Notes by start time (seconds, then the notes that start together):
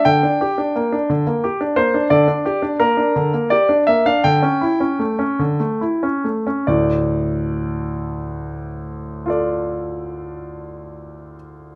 0.05 D3 G5
0.23 D4
0.41 G4
0.58 D4
0.76 A#3
0.92 D4
1.10 D3
1.27 A#3
1.44 G4
1.61 D4
1.76 A#3 C5
1.94 D4
2.10 D3 D5
2.28 D4
2.45 G4
2.62 D4
2.80 A#3 A#4
2.97 D4
3.16 D3
3.34 A#3
3.50 G4 D5
3.69 D4
3.87 A#3 E5
4.06 D4 F5
4.24 D3 G5
4.42 C#4
4.61 E4
4.80 C#4
4.99 A3
5.19 C#4
5.39 D3
5.60 A3
5.81 E4
6.03 C#4
6.24 A3
6.47 C#4
6.67 D2 A2 D5
9.26 F4 A4
9.30 D5